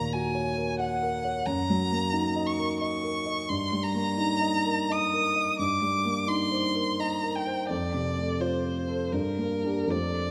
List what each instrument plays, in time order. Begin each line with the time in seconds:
Already playing: grand piano D#2 A#2 A#3, violin A#5
0.13 grand piano F#4, violin G#5
0.35 grand piano C#5
0.57 grand piano A#4
0.80 grand piano F#5, violin F#5
1.03 grand piano A#4
1.24 grand piano C#5
1.46 grand piano F#2, violin A#5
1.70 grand piano F#3
1.92 grand piano A#3
2.13 grand piano D#4
2.36 grand piano D#5
2.47 violin C#6
2.58 grand piano A#4
2.81 grand piano D#5, violin C#6
3.04 grand piano A#4
3.26 grand piano D#5
3.49 grand piano G2, violin C6
3.72 grand piano G3
3.83 violin A#5
3.94 grand piano A#3
4.17 grand piano D#4
4.41 grand piano D#5
4.66 grand piano A#4
4.90 grand piano D#5, violin D#6
5.14 grand piano A#4
5.36 grand piano D#5
5.59 grand piano G2, violin D6
5.82 grand piano G3
6.05 grand piano A#3
6.27 grand piano D#4, violin C6
6.51 grand piano C5
6.75 grand piano A#4
7.00 grand piano D#5, violin A#5
7.23 grand piano A#4
7.36 violin G5
7.47 grand piano C5
7.70 grand piano F2, violin D5
7.94 grand piano C3
8.18 grand piano A3
8.40 grand piano F4, violin C5
8.88 grand piano A4
9.13 grand piano G2, violin A#4
9.38 grand piano A#3
9.64 grand piano D4 G4
9.86 grand piano F2 A3 F4 C5
9.91 violin D5